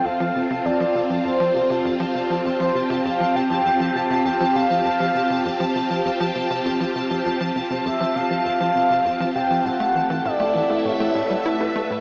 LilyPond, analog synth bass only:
\new Staff \with { instrumentName = "Analog synth bass" } { \clef bass \time 4/4 \key f \major \tempo 4 = 100 f,16 f16 c16 c16 f,16 f16 c16 f16 f,16 f16 c16 c16 f,16 f16 c16 f16 | f,16 f16 c16 c16 f,16 f16 c16 f16 f,16 f16 c16 c16 f,16 f16 c16 f16 | f,16 f16 c16 c16 f,16 f16 c16 f16 f,16 f16 c16 c16 f,16 f16 c16 f16 | f,16 f16 c16 c16 f,16 f16 c16 f16 f,16 f16 c16 c16 f,16 f16 c16 f16 |
a,16 a16 e16 e16 a,16 a16 e16 a16 a,16 a16 a,16 g16 e'16 e'16 a16 a,16 | }